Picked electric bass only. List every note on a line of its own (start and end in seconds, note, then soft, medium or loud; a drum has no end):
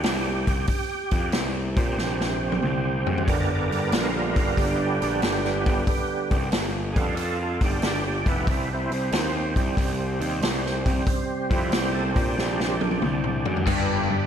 0.04 0.44 C2 medium
0.47 0.67 C2 medium
0.68 muted picked electric bass stroke soft
1.12 1.31 F2 medium
1.34 1.74 C2 medium
1.77 1.96 A#2 medium
1.98 2.59 A#1 medium
2.63 3.04 C2 medium
3.07 3.26 F#2 medium
3.28 3.69 G1 medium
3.72 3.91 G1 medium
3.92 4.33 A#1 medium
4.36 4.56 G1 medium
4.57 4.98 G1 medium
5.02 5.21 A#1 medium
5.24 5.64 G1 medium
5.66 5.86 G1 medium
5.87 muted picked electric bass stroke soft
6.31 6.51 C2 medium
6.53 6.94 G1 medium
6.97 7.58 F2 medium
7.61 7.81 G1 medium
7.83 8.24 G1 medium
8.26 8.46 F1 loud
8.47 8.88 C2 medium
8.91 9.10 C2 medium
9.12 9.53 D#2 loud
9.56 9.76 C2 medium
9.77 10.18 C2 medium
10.20 10.40 D#2 medium
10.41 10.82 C2 medium
10.86 11.06 C2 loud
11.07 muted picked electric bass stroke soft
11.50 11.70 F2 loud
11.71 12.12 C2 medium
12.16 12.35 A#2 medium
12.37 12.97 A#1 loud
13.02 13.43 C2 medium
13.46 13.65 F#2 medium
13.67 14.07 G1 loud
14.11 14.27 G1 medium